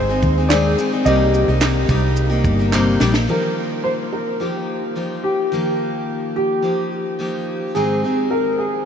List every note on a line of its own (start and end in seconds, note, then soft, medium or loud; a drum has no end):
0.00 0.19 G#1 loud
0.00 1.03 D#3 medium
0.00 1.03 G#3 medium
0.00 1.03 C4 medium
0.00 0.52 C5 medium
0.09 0.38 G#3 soft
0.09 0.38 C4 soft
0.09 0.37 D#4 soft
0.09 0.37 G#4 medium
0.22 0.74 D#2 medium
0.22 kick medium
0.22 shaker soft
0.38 0.50 G#3 soft
0.38 0.50 C4 soft
0.38 0.50 D#4 soft
0.38 0.51 G#4 soft
0.49 0.78 G#2 medium
0.49 0.79 D#3 medium
0.49 0.77 G#3 medium
0.49 0.78 C4 medium
0.49 0.79 D#4 medium
0.49 0.79 G#4 medium
0.49 1.07 D5 medium
0.49 snare loud
0.49 clap medium
0.49 shaker medium
0.78 0.92 G#3 medium
0.78 0.93 C4 medium
0.78 0.92 D#4 medium
0.78 0.91 G#4 medium
0.78 shaker medium
0.92 1.07 G#3 soft
0.92 1.07 C4 soft
0.92 1.07 D#4 medium
0.92 1.06 G#4 soft
1.05 1.44 C2 loud
1.05 1.48 C3 medium
1.05 3.27 C3 medium
1.05 1.48 G3 medium
1.05 3.27 A#3 medium
1.05 1.48 A#3 medium
1.05 3.27 D#4 medium
1.05 1.48 D#4 medium
1.05 1.47 G4 medium
1.05 2.68 D#5 medium
1.05 shaker medium
1.34 shaker medium
1.48 1.86 C2 medium
1.48 1.62 A#3 soft
1.48 1.62 D#4 soft
1.48 1.62 G4 medium
1.61 1.90 C3 medium
1.61 1.88 G3 medium
1.61 1.89 A#3 medium
1.61 1.90 D#4 medium
1.61 1.90 G4 medium
1.61 snare loud
1.61 clap medium
1.61 shaker medium
1.89 2.45 C2 loud
1.89 2.31 G3 medium
1.89 2.31 A#3 medium
1.89 2.30 D#4 medium
1.89 2.28 G4 medium
1.89 kick loud
1.89 shaker medium
2.16 shaker medium
2.30 2.59 A#3 soft
2.30 2.59 D#4 medium
2.30 2.58 G4 medium
2.44 2.96 G1 loud
2.44 kick medium
2.44 shaker soft
2.59 2.73 A#3 soft
2.59 2.73 D#4 soft
2.59 2.73 G4 medium
2.72 3.01 C3 medium
2.72 2.99 G3 medium
2.72 3.00 A#3 loud
2.72 3.00 D#4 medium
2.72 3.01 G4 medium
2.72 snare medium
2.72 clap medium
3.00 3.26 A#1 medium
3.00 3.14 G3 medium
3.00 3.15 A#3 medium
3.00 3.14 D#4 medium
3.00 3.13 G4 medium
3.00 snare medium
3.14 3.28 A#3 soft
3.14 3.28 D#4 soft
3.14 3.28 G4 medium
3.14 snare loud
3.27 4.43 D#3 medium
3.27 4.39 F3 medium
3.27 4.40 A#3 medium
3.27 4.41 D#4 medium
3.27 4.41 G4 medium
3.27 3.87 A#4 medium
3.84 3.90 C5 medium
4.13 4.41 A#4 medium
4.40 4.94 F3 soft
4.40 4.95 A#3 soft
4.40 4.96 D#4 soft
4.40 4.92 G4 medium
4.40 4.96 G4 medium
4.96 5.52 F3 soft
4.96 5.52 A#3 soft
4.96 5.54 D#4 medium
4.96 5.53 G4 soft
5.24 6.32 G4 medium
5.52 6.65 D#3 medium
5.52 6.61 F3 medium
5.52 6.63 A#3 medium
5.52 6.64 D#4 medium
5.52 6.64 G4 medium
6.36 6.88 G4 medium
6.62 7.18 F3 soft
6.62 7.19 A#3 soft
6.62 7.20 D#4 soft
6.62 7.20 G4 medium
7.19 7.75 F3 soft
7.19 7.75 A#3 medium
7.19 7.76 D#4 medium
7.19 7.76 G4 medium
7.75 8.03 G#2 medium
7.75 8.04 D#3 medium
7.75 8.04 G#3 medium
7.75 8.04 C4 medium
7.75 8.04 D#4 medium
7.75 8.33 G#4 medium
7.75 8.03 G#4 medium
8.04 8.85 G#3 soft
8.04 8.85 C4 soft
8.04 8.85 D#4 soft
8.04 8.85 G#4 soft
8.31 8.57 A#4 medium
8.58 8.85 G#4 medium